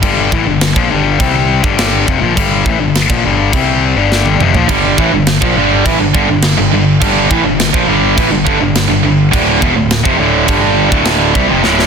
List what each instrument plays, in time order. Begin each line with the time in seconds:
0.02 picked electric bass G1, distorted electric guitar G2 D3 G3, kick, crash
0.32 picked electric bass A1, distorted electric guitar A2 E3, kick
0.46 picked electric bass G1, distorted electric guitar G2 D3
0.61 snare, crash
0.76 picked electric bass A#1, distorted electric guitar A#2 F3, kick
0.90 picked electric bass G1, distorted electric guitar G2 D3 G3
1.20 picked electric bass C2, distorted electric guitar C3 G3 C4, kick, crash
1.63 picked electric bass G1, distorted electric guitar G2 D3 G3, kick
1.79 snare, crash
2.07 picked electric bass F1, distorted electric guitar F2 C3, kick
2.20 picked electric bass A#1, distorted electric guitar A#2 F3
2.35 picked electric bass G1, distorted electric guitar G2 D3 G3, kick, crash
2.66 picked electric bass A1, distorted electric guitar A2 E3, kick
2.80 picked electric bass G1, distorted electric guitar G2 D3
2.95 snare, crash
3.10 picked electric bass A#1, distorted electric guitar A#2 F3, kick
3.25 picked electric bass G1, distorted electric guitar G2 D3 G3
3.53 picked electric bass C2, distorted electric guitar C3 G3 C4, kick, crash
3.96 picked electric bass G1, distorted electric guitar G2 D3 G3
4.12 snare
4.26 high tom
4.39 picked electric bass F1, distorted electric guitar F2 C3, mid tom
4.54 picked electric bass A#1, distorted electric guitar A#2 F3, floor tom
4.69 picked electric bass G1, distorted electric guitar G2 D3 G3, kick, crash
4.98 picked electric bass A1, distorted electric guitar A2 E3, kick
5.12 picked electric bass G1, distorted electric guitar G2 D3
5.27 snare, crash
5.42 picked electric bass A#1, distorted electric guitar A#2 F3, kick
5.56 picked electric bass G1, distorted electric guitar G2 D3 G3
5.85 picked electric bass A1, distorted electric guitar A2 E3, kick, crash
6.00 picked electric bass G1, distorted electric guitar G2 D3
6.14 picked electric bass G1, distorted electric guitar G2 D3, kick
6.29 picked electric bass G1, distorted electric guitar G2 D3
6.42 snare, crash
6.57 picked electric bass G1, distorted electric guitar G2 D3
6.72 picked electric bass G1, distorted electric guitar G2 D3
7.02 picked electric bass G1, distorted electric guitar G2 D3 G3, kick, crash
7.30 picked electric bass A1, distorted electric guitar A2 E3, kick
7.45 picked electric bass G1, distorted electric guitar G2 D3
7.60 snare, crash
7.74 picked electric bass A#1, distorted electric guitar A#2 F3, kick
7.87 picked electric bass G1, distorted electric guitar G2 D3 G3
8.18 picked electric bass A1, distorted electric guitar A2 E3, kick, crash
8.31 picked electric bass G1, distorted electric guitar G2 D3
8.47 picked electric bass G1, distorted electric guitar G2 D3, kick
8.61 picked electric bass G1, distorted electric guitar G2 D3
8.75 snare, crash
8.90 picked electric bass G1, distorted electric guitar G2 D3
9.04 picked electric bass G1, distorted electric guitar G2 D3
9.32 picked electric bass D1, distorted electric guitar D2 A2 D3, kick, crash
9.60 picked electric bass E1, distorted electric guitar E2 B2, kick
9.75 picked electric bass D1, distorted electric guitar D2 A2
9.91 snare, crash
10.03 picked electric bass F1, distorted electric guitar F2 C3, kick
10.18 picked electric bass D1, distorted electric guitar D2 A2 D3
10.47 picked electric bass G1, distorted electric guitar G2 D3 G3, kick, crash
10.89 picked electric bass D1, distorted electric guitar D2 A2 D3, kick
11.05 snare, crash
11.35 picked electric bass C2, distorted electric guitar C3 G3, kick
11.48 picked electric bass F1, distorted electric guitar F2 C3
11.64 picked electric bass D1, distorted electric guitar D2 A2 D3, snare
11.79 snare